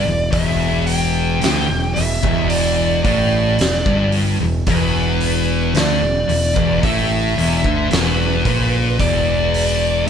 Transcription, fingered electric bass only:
0.07 0.32 E1 medium
0.32 1.37 E1 medium
1.42 1.67 D2 medium
1.71 1.95 E1 medium
1.97 2.21 E1 medium
2.23 3.00 E1 medium
3.04 3.54 A1 loud
3.58 3.83 E1 medium
3.86 4.36 G1 medium
4.41 4.65 E1 medium
4.67 5.71 E1 medium
5.74 6.00 D2 medium
6.02 6.27 E1 medium
6.28 6.53 E1 medium
6.56 6.81 E1 medium
6.83 7.33 A1 medium
7.36 7.62 E1 medium
7.64 7.89 D2 medium
7.89 8.41 E1 medium
8.46 8.96 A#1 loud
9.00 10.04 E1 medium
10.06 10.10 D2 medium

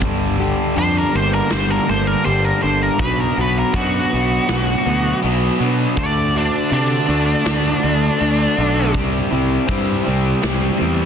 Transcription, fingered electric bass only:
0.01 0.52 G1 medium
0.77 1.02 F2 medium
1.15 1.40 G1 medium
1.52 1.77 G1 medium
1.89 2.14 G1 medium
2.26 2.51 G1 medium
2.64 2.89 G1 medium
2.99 3.25 B1 medium
3.37 3.62 B1 medium
3.74 3.99 F#2 medium
4.14 4.38 B1 medium
4.49 4.74 B1 medium
4.86 5.11 D2 medium
5.24 5.49 B1 medium
5.60 5.85 B2 medium
5.97 6.48 D2 medium
6.72 6.97 C3 medium
7.09 7.34 D2 medium
7.46 7.71 D2 medium
7.84 8.09 D2 medium
8.21 8.46 D2 medium
8.58 8.95 B1 medium
8.95 9.20 C2 medium
9.32 9.57 C2 medium
9.69 9.94 G2 medium
10.08 10.33 C2 medium
10.44 10.69 C2 medium
10.81 11.05 E2 medium

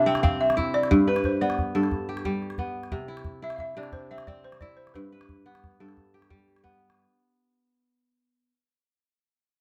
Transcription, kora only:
0.00 0.95 C3 medium
0.00 1.39 D4 medium
0.00 0.56 E4 medium
0.06 0.23 C4 medium
0.23 1.13 C4 medium
0.57 2.14 E4 medium
0.91 1.74 G2 medium
1.07 2.30 B4 medium
1.41 2.58 B3 medium
1.75 2.98 G2 medium
1.75 3.07 A4 medium
2.09 3.50 G4 medium
2.25 2.98 G3 medium
2.59 2.98 B3 medium
2.92 3.75 C3 medium
3.08 3.42 E4 medium
3.42 4.61 E4 medium
3.77 5.00 C3 medium
3.77 5.45 D4 medium
4.11 4.28 C4 medium
4.28 5.18 C4 medium
4.62 6.19 E4 medium
4.95 5.79 G2 medium
5.12 6.35 B4 medium
5.46 6.63 B3 medium
5.80 7.03 G2 medium
5.80 7.12 A4 medium
6.14 7.55 G4 medium
6.30 7.03 G3 medium
6.64 8.50 B3 medium

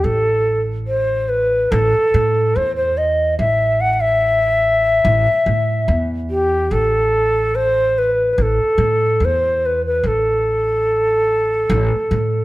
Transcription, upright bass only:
0.04 1.67 A1 medium
1.72 1.91 A1 loud
2.14 2.52 A2 loud
2.56 3.35 E2 medium
3.39 5.01 A1 medium
5.05 5.24 A1 loud
5.46 5.85 A2 medium
5.88 6.67 E2 loud
6.71 8.34 A1 medium
8.38 8.57 A1 loud
8.78 9.17 A2 loud
9.20 10.00 E2 medium
10.03 11.66 A1 medium
11.70 11.89 A1 loud
12.11 12.45 A2 medium

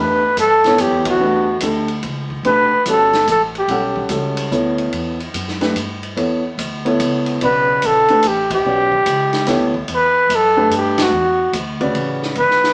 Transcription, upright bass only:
0.00 0.36 E2 medium
0.37 0.78 G2 medium
0.78 0.91 F#2 medium
0.91 1.06 E2 soft
1.07 1.19 D2 medium
1.20 1.60 E2 medium
1.62 2.02 D2 medium
2.03 2.43 C#2 medium
2.43 2.69 B1 medium
2.72 muted upright bass stroke soft
2.86 3.26 G1 medium
3.27 3.67 A1 medium
3.68 4.09 B1 medium
4.09 4.50 C#2 medium
4.51 4.92 D2 medium
4.93 5.33 E2 medium
5.34 5.74 F#2 medium
5.75 6.16 G2 medium
6.17 6.57 E2 medium
6.58 6.98 D2 medium
6.99 7.40 C#2 medium
7.41 7.81 B1 medium
7.83 8.08 A#1 medium
8.10 muted upright bass stroke soft
8.24 8.64 A1 medium
8.65 9.05 B1 medium
9.06 9.46 C#2 medium
9.48 9.88 D2 medium
9.88 10.29 E2 medium
10.29 10.70 F#2 medium
10.70 11.11 G2 medium
11.12 11.52 E2 medium
11.53 11.93 D2 medium
11.95 12.35 A1 medium
12.36 12.73 G1 medium

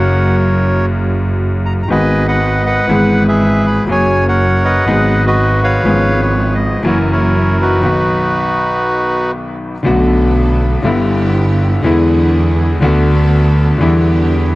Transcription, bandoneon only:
0.00 0.86 A#4 medium
0.00 0.86 C#5 medium
0.00 0.36 F#5 medium
1.66 1.73 A#5 medium
1.83 1.89 A#5 medium
1.91 2.27 B4 medium
1.91 2.27 D#5 medium
1.91 2.25 G#5 medium
2.28 2.64 B4 medium
2.28 2.86 D#5 medium
2.28 2.62 F#5 medium
2.66 3.27 B4 medium
2.66 3.23 F#5 medium
3.28 3.85 G#4 medium
3.28 3.86 B4 medium
3.28 3.66 E5 medium
3.67 3.89 B5 medium
3.91 4.27 C#5 medium
3.91 4.25 G#5 medium
4.28 4.85 A#4 medium
4.28 4.85 C#5 medium
4.28 4.64 F#5 medium
4.64 5.25 B4 medium
4.64 5.26 D#5 medium
4.64 5.22 F#5 medium
5.27 5.83 F#4 medium
5.27 5.62 B4 medium
5.27 5.60 D#5 medium
5.64 6.57 B4 medium
5.64 6.21 C#5 medium
5.64 6.22 F5 medium
6.22 6.54 C#5 medium
6.54 6.84 D#5 medium
6.87 7.10 E4 medium
6.87 7.10 A#4 medium
6.87 6.98 C#5 medium
7.12 7.81 E4 medium
7.12 7.81 A#4 medium
7.12 7.57 C#5 medium
7.62 9.31 D#4 medium
7.62 9.31 F#4 soft
7.62 9.31 B4 medium

